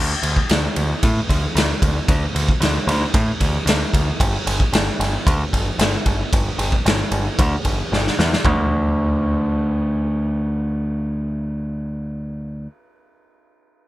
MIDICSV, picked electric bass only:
0, 0, Header, 1, 2, 480
1, 0, Start_track
1, 0, Tempo, 529568
1, 1889, Time_signature, 4, 2, 24, 8
1, 12580, End_track
2, 0, Start_track
2, 0, Title_t, "Picked electric bass"
2, 0, Program_c, 0, 34
2, 0, Note_on_c, 0, 38, 100
2, 118, Note_off_c, 0, 38, 0
2, 206, Note_on_c, 0, 38, 84
2, 353, Note_off_c, 0, 38, 0
2, 459, Note_on_c, 0, 38, 95
2, 602, Note_off_c, 0, 38, 0
2, 695, Note_on_c, 0, 38, 92
2, 839, Note_off_c, 0, 38, 0
2, 938, Note_on_c, 0, 45, 97
2, 1081, Note_off_c, 0, 45, 0
2, 1172, Note_on_c, 0, 38, 84
2, 1318, Note_off_c, 0, 38, 0
2, 1407, Note_on_c, 0, 38, 94
2, 1554, Note_off_c, 0, 38, 0
2, 1650, Note_on_c, 0, 38, 87
2, 1796, Note_off_c, 0, 38, 0
2, 1889, Note_on_c, 0, 38, 97
2, 2036, Note_off_c, 0, 38, 0
2, 2128, Note_on_c, 0, 38, 80
2, 2275, Note_off_c, 0, 38, 0
2, 2360, Note_on_c, 0, 38, 95
2, 2510, Note_off_c, 0, 38, 0
2, 2604, Note_on_c, 0, 38, 98
2, 2752, Note_off_c, 0, 38, 0
2, 2849, Note_on_c, 0, 45, 102
2, 2996, Note_off_c, 0, 45, 0
2, 3091, Note_on_c, 0, 38, 87
2, 3238, Note_off_c, 0, 38, 0
2, 3315, Note_on_c, 0, 38, 93
2, 3467, Note_off_c, 0, 38, 0
2, 3566, Note_on_c, 0, 38, 88
2, 3714, Note_off_c, 0, 38, 0
2, 3807, Note_on_c, 0, 31, 101
2, 3955, Note_off_c, 0, 31, 0
2, 4047, Note_on_c, 0, 31, 86
2, 4195, Note_off_c, 0, 31, 0
2, 4284, Note_on_c, 0, 31, 94
2, 4433, Note_off_c, 0, 31, 0
2, 4528, Note_on_c, 0, 31, 96
2, 4675, Note_off_c, 0, 31, 0
2, 4772, Note_on_c, 0, 38, 95
2, 4918, Note_off_c, 0, 38, 0
2, 5012, Note_on_c, 0, 31, 82
2, 5158, Note_off_c, 0, 31, 0
2, 5246, Note_on_c, 0, 31, 93
2, 5394, Note_off_c, 0, 31, 0
2, 5490, Note_on_c, 0, 31, 89
2, 5636, Note_off_c, 0, 31, 0
2, 5737, Note_on_c, 0, 31, 94
2, 5881, Note_off_c, 0, 31, 0
2, 5967, Note_on_c, 0, 31, 86
2, 6114, Note_off_c, 0, 31, 0
2, 6212, Note_on_c, 0, 31, 96
2, 6358, Note_off_c, 0, 31, 0
2, 6448, Note_on_c, 0, 31, 89
2, 6595, Note_off_c, 0, 31, 0
2, 6699, Note_on_c, 0, 38, 98
2, 6842, Note_off_c, 0, 38, 0
2, 6934, Note_on_c, 0, 31, 84
2, 7079, Note_off_c, 0, 31, 0
2, 7179, Note_on_c, 0, 31, 93
2, 7322, Note_off_c, 0, 31, 0
2, 7422, Note_on_c, 0, 40, 90
2, 7565, Note_off_c, 0, 40, 0
2, 7657, Note_on_c, 0, 38, 99
2, 11478, Note_off_c, 0, 38, 0
2, 12580, End_track
0, 0, End_of_file